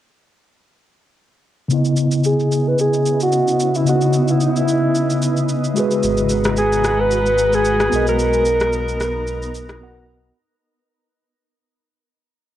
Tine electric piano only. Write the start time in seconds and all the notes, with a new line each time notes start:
1.68 C#3 B3 E4
1.74 D#5
3.84 C#3 B3 D#4
3.90 D#5
3.95 E4
5.74 G#3 F#4 G#4
5.79 B4
7.90 B3 F#4
7.94 A#4 D#5
9.80 B3 F#4 A#4 F#5